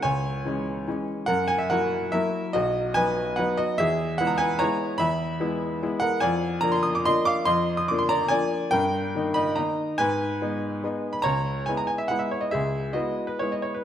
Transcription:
<<
  \new Staff \with { instrumentName = "Grand piano" } { \time 3/4 \key cis \dorian \tempo 4 = 143 <cis'' gis''>2~ <cis'' gis''>8 r8 | <ais' fis''>8 gis''16 e''16 <ais' fis''>4 <ais' e''>4 | <fis' dis''>4 <b' gis''>4 <b' fis''>8 <fis' dis''>8 | <gis' e''>4 fis''16 ais''16 <b' gis''>8 <cis'' ais''>4 |
<e'' b''>2~ <e'' b''>8 <ais' fis''>8 | <d'' gis''>4 ais''16 bis''16 dis'''16 d'''16 <dis'' bis''>8 <eis'' d'''>8 | <dis'' bis''>8. dis'''16 d'''16 bis''16 <d'' ais''>8 <d'' gis''>4 | <ais' g''>4. <dis'' b''>8 <dis'' ais''>4 |
<b' gis''>2~ <b' gis''>8. b''16 | <cis'' ais''>4 gis''16 ais''16 gis''16 e''16 fis''16 e''16 cis''16 dis''16 | <gis' e''>4 <fis' dis''>8. b'16 cis''16 dis''16 cis''16 b'16 | }
  \new Staff \with { instrumentName = "Grand piano" } { \time 3/4 \key cis \dorian cis,4 <e gis cis'>4 <e gis cis'>4 | fis,4 <fis ais e'>4 <fis ais e'>4 | b,,4 <fis b dis'>4 <fis b dis'>4 | e,4 <gis b e'>4 <gis b e'>4 |
e,4 <gis b e'>4 <gis b e'>4 | eis,4 <eis ais d'>4 <eis ais d'>4 | eis,4 <eis ais d'>4 <eis ais d'>4 | g,4 <dis ais dis'>4 <dis ais dis'>4 |
gis,4 <gis b dis'>4 <gis b dis'>4 | cis,4 <gis b e'>4 <gis b e'>4 | cis,4 <gis b e'>4 <gis b e'>4 | }
>>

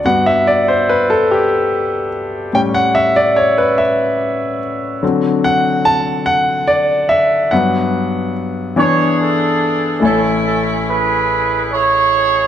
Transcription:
<<
  \new Staff \with { instrumentName = "Grand piano" } { \time 6/8 \key g \major \tempo 4. = 48 fis''16 e''16 d''16 c''16 b'16 a'16 g'4 r8 | g''16 fis''16 e''16 d''16 cis''16 b'16 e''4 r8 | r8 fis''8 a''8 fis''8 d''8 e''8 | fis''4 r2 |
\key a \major <a e' cis'' gis''>2. | }
  \new Staff \with { instrumentName = "Grand piano" } { \clef bass \time 6/8 \key g \major <g, b fis'>2. | <a, g cis'>8 r2 r8 | <d fis c'>2. | <g, fis b>4. <e b d'>4. |
\key a \major <a,, a,>2. | }
  \new Staff \with { instrumentName = "Horn section" } { \time 6/8 \key g \major << { r2. | r2. | r2. | r4. cis''8 a'4 |
\key a \major a'8 a'8 b'4 cis''4 | } \\ { r2. | r2. | r2. | r4. gis'8 d'4 |
<cis' e'>4 <e' gis'>4 <e' gis'>4 | } >> }
>>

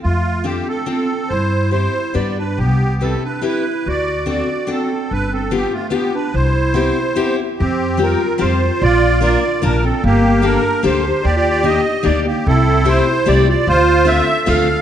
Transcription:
<<
  \new Staff \with { instrumentName = "Accordion" } { \time 3/4 \key c \major \tempo 4 = 146 << { f'4 g'8 a'8 a'4 | c''4 c''4 d''8 b'8 | g'4 a'8 b'8 b'4 | d''4 d''4 a'4 |
b'8 a'8 g'8 f'8 g'8 b'8 | c''2~ c''8 r8 | \key f \major g'4 bes'4 c''4 | d''4 d''4 bes'8 a'8 |
g'4 bes'4 c''4 | \tuplet 3/2 { d''8 d''8 d''8 } ees''4 d''8 g'8 | a'4 c''4 d''8 d''8 | c''4 e''4 f''4 | } \\ { r2. | r2. | r2. | r2. |
r2. | r2. | c'4. r4. | f'4. r4. |
bes4. r4. | g'4. r4. | e'4. r4. | f'4. r4. | } >> }
  \new Staff \with { instrumentName = "Clarinet" } { \time 3/4 \key c \major a4 c'8 c'8 c'4 | e'4 e'4 g'8 d'8 | b4 c'8 d'8 e'4 | fis'4 fis'4 c'4 |
d'8 c'8 b8 a8 b8 d'8 | e'2~ e'8 r8 | \key f \major c'4 f'4 f'4 | f'4 f'4 d'8 c'8 |
bes4 d'4 g'4 | \tuplet 3/2 { g'8 f'8 f'8 } g'4 g'8 bes8 | c'4 e'4 g'8 f'8 | f'4 a'4 a'4 | }
  \new Staff \with { instrumentName = "Steel-string acoustic guitar" } { \time 3/4 \key c \major r4 <c' d' f' a'>8 r8 <c' d' f' a'>8 r8 | r4 <c' e' g' c''>8 r8 <b d' g' b'>8 r8 | r4 <c' e' g' b'>8 r8 <c' e' g' b'>8 r8 | r4 <c' d' fis' a'>8 r8 <c' d' fis' a'>8 r8 |
r4 <b d' f' g'>8 r8 <b d' f' g'>8 r8 | r4 <b c' e' g'>8 r8 <b c' e' g'>8 r8 | \key f \major r4 <g c' f' g'>8 r8 <g c' f' g'>8 r8 | r4 <bes d' f' bes'>8 r8 <bes d' f' bes'>8 r8 |
r4 <bes d' g' a'>8 r8 <bes d' g' a'>8 r8 | r4 <bes d' ees' g'>8 r8 <bes d' ees' g'>8 r8 | r4 <a c' e' g'>8 r8 <a c' e' g'>8 r8 | r4 <a c' d' f'>8 r8 <a c' d' f'>8 r8 | }
  \new Staff \with { instrumentName = "Upright bass" } { \clef bass \time 3/4 \key c \major f,2 r4 | g,2 g,4 | c,2 r4 | d,2 r4 |
g,,2 r4 | c,2 r4 | \key f \major f,2 f,4 | bes,,2 bes,,4 |
g,,2 d,4 | ees,2 d,4 | c,2 c,4 | d,2 d,4 | }
>>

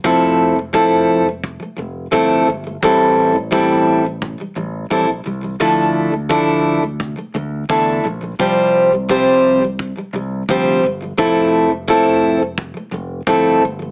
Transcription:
<<
  \new Staff \with { instrumentName = "Steel-string acoustic guitar" } { \clef bass \time 4/4 \key f \major \tempo 4 = 86 <f a c' e' a'>8. <f a>16 <f a c' e' a'>8. f8 <f a>16 <f a>8 <f a c' e' a'>8 <f a>16 <f a>16 | <a, e g c' e' a'>8. <a, e g>16 <a, e g c' e' a'>8. <a, e g>8 <a, e g>16 <a, e g>8 <a, e g c' e' a'>16 <a, e g>16 <a, e g>16 <a, e g>16 | <d f a d' e' a'>8. <d f a>16 <d f a d' e' a'>8. <d f a>8 <d f a>16 <d f a>8 <d a d' e' a'>8 <d f a>16 <d f a>16 | <c f g c' g' c''>8. <c f g>16 <c f g c' g' c''>8. <c f g>8 <c f g>16 <c f g>8 <c f g c' g' c''>8 <c f g>16 <c f g>16 |
<f a c' e' a'>8. f16 <f a c' e' a'>8. <f a>8 <f a>16 <f a>8 <f a c' e' a'>8 <f a>16 <f a>16 | }
  \new Staff \with { instrumentName = "Fingered electric bass" } { \clef bass \time 4/4 \key f \major f,,2~ f,,16 r16 f,,8 g,,8 g,,8 | a,,2~ a,,16 r16 a,,8 bes,,8 c,8 | d,2~ d,16 r16 d,8 e,8 bes,,8 | c,2~ c,16 r16 c,8 d,8 g,,8 |
f,,2~ f,,16 r16 f,,8 g,,8 g,,8 | }
  \new DrumStaff \with { instrumentName = "Drums" } \drummode { \time 4/4 bd4 bd4 bd4 bd4 | bd4 bd4 bd4 bd4 | bd4 bd4 bd4 bd4 | bd4 bd4 bd4 bd4 |
bd4 bd4 bd4 bd4 | }
>>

